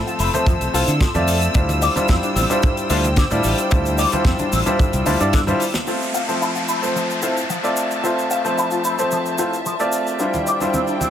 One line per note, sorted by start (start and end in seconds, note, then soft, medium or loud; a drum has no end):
0.00 0.31 F3 medium
0.00 0.31 A3 medium
0.00 0.31 C4 medium
0.00 1.51 A4 medium
0.00 0.31 C5 medium
0.00 5.84 E6 medium
0.07 0.14 F4 medium
0.07 closed hi-hat soft
0.07 shaker soft
0.19 0.28 F1 loud
0.19 0.27 E4 medium
0.19 open hi-hat loud
0.19 shaker medium
0.34 0.71 F3 medium
0.34 0.71 A3 medium
0.34 0.71 C4 medium
0.34 0.71 C5 medium
0.34 closed hi-hat medium
0.34 muted conga medium
0.34 low conga medium
0.34 shaker medium
0.46 0.55 F2 loud
0.46 0.51 F3 medium
0.46 kick loud
0.46 closed hi-hat medium
0.46 high conga medium
0.46 shaker medium
0.61 0.69 C2 medium
0.61 closed hi-hat medium
0.61 muted conga soft
0.61 shaker soft
0.73 0.82 C2 medium
0.73 0.89 A3 medium
0.73 0.89 C4 medium
0.73 0.89 E4 medium
0.73 0.81 F4 loud
0.73 0.89 F4 medium
0.73 0.90 C5 medium
0.73 open hi-hat loud
0.73 shaker loud
0.88 1.04 D3 loud
0.88 closed hi-hat medium
0.88 shaker medium
1.01 1.08 F3 loud
1.01 kick loud
1.01 snare loud
1.01 closed hi-hat loud
1.01 muted conga medium
1.01 shaker medium
1.14 1.47 F2 medium
1.14 1.52 A3 medium
1.14 1.52 C4 medium
1.14 1.52 F4 medium
1.14 1.52 D5 medium
1.14 1.52 E5 medium
1.14 closed hi-hat medium
1.14 high conga medium
1.14 low conga medium
1.14 shaker soft
1.28 open hi-hat loud
1.28 muted conga medium
1.28 shaker medium
1.41 closed hi-hat medium
1.41 shaker soft
1.54 1.87 D2 medium
1.54 1.93 G3 medium
1.54 1.93 D4 medium
1.54 1.59 D4 medium
1.54 1.93 E4 medium
1.54 1.93 F4 medium
1.54 5.83 C5 medium
1.54 1.93 C5 medium
1.54 5.83 G5 medium
1.54 kick loud
1.54 closed hi-hat medium
1.54 shaker medium
1.69 closed hi-hat medium
1.69 muted conga medium
1.69 shaker soft
1.82 1.93 D5 medium
1.82 open hi-hat loud
1.82 shaker medium
1.96 2.47 G3 medium
1.96 2.47 D4 medium
1.96 2.47 E4 medium
1.96 2.47 F4 medium
1.96 2.47 C5 medium
1.96 muted fingered electric bass stroke soft
1.96 closed hi-hat medium
1.96 muted conga medium
1.96 high conga medium
1.96 shaker soft
2.08 2.18 F2 medium
2.08 2.13 C4 medium
2.08 kick medium
2.08 snare loud
2.08 closed hi-hat medium
2.08 shaker medium
2.23 2.30 D4 medium
2.23 closed hi-hat soft
2.23 shaker soft
2.36 2.44 A1 loud
2.36 2.43 C4 medium
2.36 open hi-hat loud
2.36 muted conga medium
2.36 shaker medium
2.50 2.87 G3 medium
2.50 2.87 D4 medium
2.50 2.87 E4 medium
2.50 2.87 F4 medium
2.50 2.87 C5 loud
2.50 closed hi-hat medium
2.50 low conga medium
2.50 shaker medium
2.63 2.67 D3 medium
2.63 kick loud
2.63 closed hi-hat medium
2.63 muted conga medium
2.63 high conga medium
2.63 shaker medium
2.77 closed hi-hat medium
2.77 shaker soft
2.90 3.22 D2 medium
2.90 3.05 G3 medium
2.90 2.97 D4 loud
2.90 3.06 D4 medium
2.90 3.06 E4 medium
2.90 3.06 F4 medium
2.90 3.06 C5 medium
2.90 open hi-hat loud
2.90 shaker medium
3.04 closed hi-hat medium
3.04 muted conga medium
3.04 shaker soft
3.16 3.24 D3 loud
3.16 kick loud
3.16 snare loud
3.16 closed hi-hat loud
3.16 shaker medium
3.31 3.39 A2 medium
3.31 3.68 G3 medium
3.31 3.68 D4 medium
3.31 3.68 E4 medium
3.31 3.68 F4 medium
3.31 3.68 D5 medium
3.31 closed hi-hat medium
3.31 muted conga soft
3.31 high conga medium
3.31 shaker soft
3.44 3.53 A1 medium
3.44 open hi-hat loud
3.44 shaker medium
3.58 closed hi-hat medium
3.58 shaker soft
3.71 4.04 D2 medium
3.71 4.09 G3 medium
3.71 4.09 D4 medium
3.71 3.76 D4 medium
3.71 4.09 E4 medium
3.71 4.09 F4 medium
3.71 4.09 C5 medium
3.71 kick loud
3.71 closed hi-hat loud
3.71 muted conga medium
3.71 shaker medium
3.85 closed hi-hat medium
3.85 shaker soft
3.98 4.09 D5 medium
3.98 open hi-hat loud
3.98 muted conga soft
3.98 shaker loud
4.12 4.63 G3 medium
4.12 4.63 D4 medium
4.12 4.63 E4 medium
4.12 4.63 F4 medium
4.12 4.63 C5 loud
4.12 muted fingered electric bass stroke soft
4.12 closed hi-hat medium
4.12 high conga medium
4.12 shaker soft
4.25 4.33 F2 medium
4.25 4.29 C4 medium
4.25 kick loud
4.25 snare loud
4.25 closed hi-hat loud
4.25 shaker medium
4.39 4.46 D4 medium
4.39 closed hi-hat medium
4.39 muted conga medium
4.39 shaker soft
4.52 4.61 A1 loud
4.52 4.59 C4 medium
4.52 open hi-hat medium
4.52 shaker medium
4.66 5.03 G3 medium
4.66 5.03 D4 medium
4.66 5.03 E4 medium
4.66 5.04 F4 medium
4.66 5.04 C5 loud
4.66 closed hi-hat medium
4.66 muted conga soft
4.66 low conga medium
4.66 shaker medium
4.79 4.84 D3 medium
4.79 kick loud
4.79 closed hi-hat loud
4.79 high conga medium
4.79 shaker medium
4.93 5.01 C2 loud
4.93 closed hi-hat medium
4.93 low conga medium
4.93 shaker soft
5.06 5.15 D2 medium
5.06 5.17 G3 medium
5.06 5.17 D4 medium
5.06 5.13 D4 loud
5.06 5.17 E4 medium
5.06 5.17 F4 medium
5.06 5.17 C5 medium
5.06 open hi-hat loud
5.06 muted conga medium
5.06 shaker medium
5.20 5.52 G2 loud
5.20 5.35 G3 medium
5.20 5.35 D4 medium
5.20 5.35 E4 medium
5.20 5.35 F4 medium
5.20 5.35 D5 medium
5.20 closed hi-hat medium
5.20 shaker medium
5.33 5.40 D3 loud
5.33 kick loud
5.33 snare loud
5.33 closed hi-hat loud
5.33 muted conga medium
5.33 shaker medium
5.47 5.62 G3 loud
5.47 5.62 D4 medium
5.47 5.62 E4 medium
5.47 5.62 F4 medium
5.47 5.62 C5 loud
5.47 closed hi-hat medium
5.47 high conga medium
5.47 low conga medium
5.47 shaker soft
5.60 open hi-hat loud
5.60 shaker medium
5.74 snare medium
5.74 closed hi-hat medium
5.74 muted conga medium
5.74 shaker soft
5.87 6.25 A3 medium
5.87 6.25 C4 medium
5.87 5.92 F4 medium
5.87 6.26 F4 medium
5.87 6.26 C5 medium
5.87 6.25 E5 medium
5.87 11.10 E5 medium
5.87 10.16 A5 medium
5.87 downlifter medium
5.87 shaker soft
6.02 shaker soft
6.14 6.25 F5 medium
6.14 shaker medium
6.28 6.79 F3 medium
6.28 6.79 A3 medium
6.28 6.79 C4 medium
6.28 6.79 C5 medium
6.28 shaker soft
6.41 6.46 E4 medium
6.41 shaker medium
6.56 6.62 F4 medium
6.56 shaker soft
6.68 6.76 E4 medium
6.68 shaker medium
6.82 7.20 F3 medium
6.82 7.19 A3 medium
6.82 7.20 C4 medium
6.82 7.20 C5 medium
6.82 shaker soft
6.95 7.00 F3 medium
6.95 shaker soft
7.10 shaker soft
7.22 7.38 A3 medium
7.22 7.38 C4 medium
7.22 7.38 E4 medium
7.22 7.30 F4 medium
7.22 7.38 F4 medium
7.22 7.38 C5 medium
7.22 shaker medium
7.37 shaker soft
7.49 7.57 F3 medium
7.49 shaker medium
7.63 8.00 A3 medium
7.63 8.01 C4 medium
7.63 8.01 F4 medium
7.63 8.01 D5 medium
7.63 8.01 E5 medium
7.63 shaker soft
7.77 shaker medium
7.91 shaker soft
8.03 8.41 A3 medium
8.03 8.42 C4 medium
8.03 8.08 F4 medium
8.03 8.42 F4 medium
8.03 8.42 C5 medium
8.03 8.42 E5 medium
8.03 shaker soft
8.19 shaker soft
8.30 8.41 F5 medium
8.30 shaker medium
8.45 8.96 F3 medium
8.45 8.95 A3 medium
8.45 8.95 C4 medium
8.45 8.96 C5 medium
8.45 shaker soft
8.58 8.62 E4 medium
8.58 shaker medium
8.71 8.78 F4 medium
8.71 shaker soft
8.84 8.92 E4 medium
8.84 shaker medium
8.99 9.36 F3 medium
8.99 9.36 A3 medium
8.99 9.36 C4 medium
8.99 9.36 C5 medium
8.99 shaker soft
9.11 9.16 F3 medium
9.11 shaker medium
9.26 shaker soft
9.38 9.54 A3 medium
9.38 9.54 C4 medium
9.38 9.54 E4 medium
9.38 9.46 F4 medium
9.38 9.54 F4 medium
9.38 9.54 C5 medium
9.38 shaker medium
9.53 shaker soft
9.66 9.73 F3 medium
9.66 shaker medium
9.80 10.17 A3 medium
9.80 10.17 C4 medium
9.80 10.17 F4 medium
9.80 10.17 D5 medium
9.80 10.17 E5 medium
9.80 shaker soft
9.92 shaker medium
10.07 shaker soft
10.19 10.57 G3 medium
10.19 10.58 D4 medium
10.19 10.24 D4 medium
10.19 10.58 E4 medium
10.19 10.58 F4 medium
10.19 11.10 C5 medium
10.19 10.58 C5 medium
10.19 11.10 D5 medium
10.19 11.10 G5 medium
10.19 shaker medium
10.19 maracas soft
10.34 muted conga medium
10.34 high conga medium
10.34 shaker soft
10.46 10.58 D5 medium
10.46 maracas medium
10.46 shaker medium
10.60 11.10 G3 medium
10.60 11.10 D4 medium
10.60 11.10 E4 medium
10.60 11.10 F4 medium
10.60 11.10 C5 medium
10.60 muted conga soft
10.60 maracas soft
10.60 shaker soft
10.73 10.78 C4 medium
10.73 high conga medium
10.73 maracas soft
10.73 shaker medium
10.88 10.95 D4 medium
10.88 shaker soft
10.88 maracas soft
11.01 11.08 C4 medium
11.01 muted conga medium
11.01 high conga medium
11.01 maracas medium
11.01 shaker medium